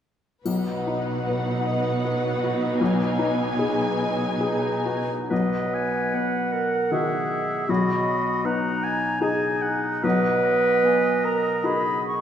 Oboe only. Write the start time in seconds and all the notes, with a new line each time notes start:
5.32 D#5
5.74 G#5
6.15 F#5
6.93 E5
7.70 D#5
8.46 F#5
8.84 G#5
9.22 G#5
9.62 F#5
10.04 D#5
10.45 D#5